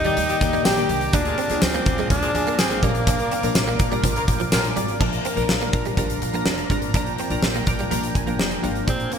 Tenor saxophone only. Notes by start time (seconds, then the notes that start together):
Already playing: D#4
0.65 G4
1.14 D4
1.62 C4
2.10 D4
2.59 C4
2.83 A#3
8.89 C4
9.13 A#3